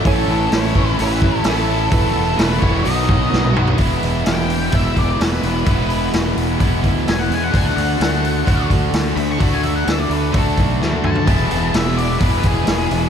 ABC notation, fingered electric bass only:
X:1
M:4/4
L:1/8
Q:1/4=128
K:Emix
V:1 name="Fingered electric bass" clef=bass
A,,, A,,, A,,, A,,, A,,,2 A,,,2 | E,,, E,,, E,,, E,,, B,,,2 B,,,2 | E,,, E,,, E,,,2 E,,, E,,, E,,, E,,, | E,,,2 E,,, E,,, E,,, D,, E,,, E,, |
D,, D,, D,,2 D,, D,, D,, D,, | D,,2 D,, D,, D,, B,,, D,, D,, | E,,, E,,, E,,,2 E,,, E,,, E,,, E,,, |]